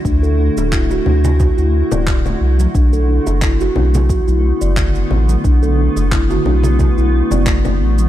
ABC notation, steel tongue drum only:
X:1
M:4/4
L:1/16
Q:"Swing 16ths" 1/4=89
K:Bm
V:1 name="Steel tongue drum"
D A D2 E F D z F E z d z4 | D A D2 E F D z F E z d z4 | D A D2 E F D z2 E z d z4 |]